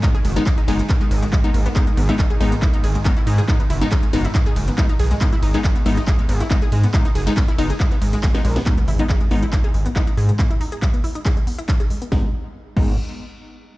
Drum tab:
CC |----------------|----------------|----------------|----------------|
RD |x-x-x-x-x-x-x-x-|x-x-x-x-x-x---x-|x-x-x-x-x-x-x-x-|x-x-x-x-x-x-x-x-|
HH |xxoxxxoxxxoxxxox|xxoxxxoxxxoxxxox|xxoxxxoxxxoxxxox|xxoxxxoxxxoxxxox|
CP |x---x---x---x---|x---x---x---x---|x---x---x---x---|x---x---x---x---|
SD |----------------|----------------|----------------|----------------|
BD |o---o---o---o---|o---o---o---o---|o---o---o---o---|o---o---o---o---|

CC |----------------|----------------|----------------|------x---------|
RD |x-x-x-x-x-x-x-x-|----------------|----------------|----------------|
HH |xxoxxxoxxxoxxxox|xxoxxxoxxxoxxxox|xxoxxxoxxxoxxxox|----------------|
CP |x---x---x---x---|x---x---x---x---|x---x---x---x---|----------------|
SD |------------oo-o|----------------|----------------|o---------------|
BD |o---o---o---o---|o---o---o---o---|o---o---o---o---|o-----o---------|